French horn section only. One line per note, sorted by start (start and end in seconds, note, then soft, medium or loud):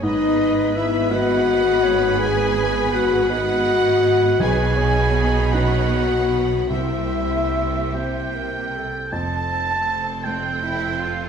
0.03 0.72 D#4 loud
0.76 1.12 E4 loud
1.10 2.19 F#4 loud
2.18 2.91 G#4 loud
2.93 3.29 F#4 loud
3.31 4.39 F#4 loud
4.40 5.53 G#4 loud
5.52 6.70 F#4 loud
6.70 8.70 E4 loud